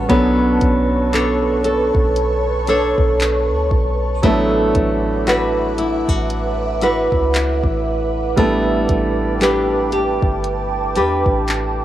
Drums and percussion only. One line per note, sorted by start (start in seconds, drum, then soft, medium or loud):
0.10 kick loud
0.10 closed hi-hat medium
0.61 kick loud
0.61 closed hi-hat medium
1.13 clap loud
1.13 closed hi-hat medium
1.64 closed hi-hat medium
1.95 kick loud
2.16 closed hi-hat medium
2.67 closed hi-hat medium
2.98 kick medium
3.20 clap loud
3.20 closed hi-hat medium
3.71 kick loud
4.23 kick loud
4.23 closed hi-hat medium
4.75 kick loud
4.75 closed hi-hat medium
5.27 clap loud
5.27 closed hi-hat medium
5.78 closed hi-hat medium
6.09 kick loud
6.30 closed hi-hat medium
6.82 closed hi-hat medium
7.12 kick loud
7.34 clap loud
7.34 closed hi-hat medium
7.64 kick medium
8.37 kick loud
8.37 closed hi-hat medium
8.89 kick loud
8.89 closed hi-hat medium
9.41 clap loud
9.41 closed hi-hat medium
9.92 closed hi-hat medium
10.23 kick loud
10.44 closed hi-hat medium
10.96 closed hi-hat medium
11.26 kick loud
11.48 clap loud
11.48 closed hi-hat medium